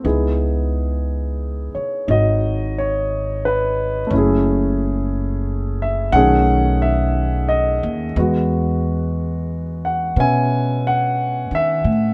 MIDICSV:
0, 0, Header, 1, 4, 480
1, 0, Start_track
1, 0, Key_signature, 4, "major"
1, 0, Tempo, 1011804
1, 19, Time_signature, 4, 2, 24, 8
1, 5758, End_track
2, 0, Start_track
2, 0, Title_t, "Grand piano"
2, 0, Program_c, 0, 0
2, 0, Control_c, 0, 64, 127
2, 18, Note_on_c, 0, 59, 50
2, 21, Note_on_c, 0, 63, 41
2, 23, Note_on_c, 0, 64, 41
2, 25, Note_on_c, 0, 68, 55
2, 26, Control_c, 0, 64, 0
2, 119, Control_c, 0, 64, 127
2, 828, Note_on_c, 0, 73, 57
2, 977, Note_off_c, 0, 63, 0
2, 983, Note_off_c, 0, 73, 0
2, 984, Note_on_c, 0, 63, 45
2, 996, Note_on_c, 0, 66, 46
2, 1000, Note_on_c, 0, 75, 77
2, 1296, Note_off_c, 0, 75, 0
2, 1321, Note_on_c, 0, 73, 73
2, 1616, Note_off_c, 0, 73, 0
2, 1638, Note_on_c, 0, 71, 78
2, 1894, Note_off_c, 0, 71, 0
2, 1930, Note_on_c, 0, 57, 56
2, 1947, Note_on_c, 0, 61, 55
2, 1948, Note_off_c, 0, 59, 0
2, 1948, Note_off_c, 0, 63, 0
2, 1951, Note_off_c, 0, 64, 0
2, 1952, Note_off_c, 0, 68, 0
2, 1953, Note_off_c, 0, 66, 0
2, 1955, Control_c, 0, 64, 0
2, 1962, Note_on_c, 0, 64, 56
2, 1981, Note_on_c, 0, 68, 64
2, 2052, Control_c, 0, 64, 127
2, 2762, Note_on_c, 0, 76, 68
2, 2900, Note_off_c, 0, 57, 0
2, 2905, Note_on_c, 0, 78, 98
2, 2908, Note_off_c, 0, 61, 0
2, 2911, Note_off_c, 0, 76, 0
2, 2913, Note_off_c, 0, 68, 0
2, 2914, Control_c, 0, 64, 0
2, 2915, Note_on_c, 0, 61, 54
2, 2916, Note_off_c, 0, 64, 0
2, 2917, Note_on_c, 0, 57, 59
2, 2920, Note_on_c, 0, 68, 67
2, 2921, Note_on_c, 0, 51, 60
2, 2996, Control_c, 0, 64, 127
2, 3209, Note_off_c, 0, 78, 0
2, 3235, Note_on_c, 0, 76, 77
2, 3533, Note_off_c, 0, 76, 0
2, 3551, Note_on_c, 0, 75, 78
2, 3810, Note_off_c, 0, 75, 0
2, 3871, Note_off_c, 0, 61, 0
2, 3872, Note_off_c, 0, 57, 0
2, 3873, Note_off_c, 0, 68, 0
2, 3873, Control_c, 0, 64, 0
2, 3874, Note_off_c, 0, 51, 0
2, 3876, Note_on_c, 0, 59, 48
2, 3877, Note_on_c, 0, 56, 51
2, 3886, Note_on_c, 0, 66, 60
2, 3944, Control_c, 0, 64, 127
2, 4672, Note_on_c, 0, 78, 67
2, 4815, Note_off_c, 0, 59, 0
2, 4822, Note_on_c, 0, 59, 48
2, 4824, Note_off_c, 0, 78, 0
2, 4829, Note_on_c, 0, 61, 46
2, 4835, Note_on_c, 0, 76, 50
2, 4839, Note_on_c, 0, 80, 92
2, 5132, Note_off_c, 0, 80, 0
2, 5157, Note_on_c, 0, 78, 80
2, 5449, Note_off_c, 0, 78, 0
2, 5472, Note_off_c, 0, 76, 0
2, 5479, Note_on_c, 0, 76, 94
2, 5634, Note_off_c, 0, 76, 0
2, 5758, Note_off_c, 0, 56, 0
2, 5758, Note_off_c, 0, 59, 0
2, 5758, Note_off_c, 0, 61, 0
2, 5758, Note_off_c, 0, 66, 0
2, 5758, End_track
3, 0, Start_track
3, 0, Title_t, "Upright bass"
3, 0, Program_c, 1, 32
3, 22, Note_on_c, 1, 37, 69
3, 813, Note_off_c, 1, 37, 0
3, 987, Note_on_c, 1, 32, 78
3, 1930, Note_off_c, 1, 32, 0
3, 1947, Note_on_c, 1, 30, 78
3, 2890, Note_off_c, 1, 30, 0
3, 2905, Note_on_c, 1, 35, 86
3, 3693, Note_off_c, 1, 35, 0
3, 3716, Note_on_c, 1, 39, 69
3, 3858, Note_off_c, 1, 39, 0
3, 3872, Note_on_c, 1, 40, 82
3, 4807, Note_off_c, 1, 40, 0
3, 4821, Note_on_c, 1, 47, 82
3, 5441, Note_off_c, 1, 47, 0
3, 5460, Note_on_c, 1, 51, 62
3, 5609, Note_off_c, 1, 51, 0
3, 5619, Note_on_c, 1, 45, 68
3, 5758, Note_off_c, 1, 45, 0
3, 5758, End_track
4, 0, Start_track
4, 0, Title_t, "Muted upright bass strokes"
4, 829, Note_on_c, 9, 29, 38
4, 877, Note_off_c, 9, 29, 0
4, 5758, End_track
0, 0, End_of_file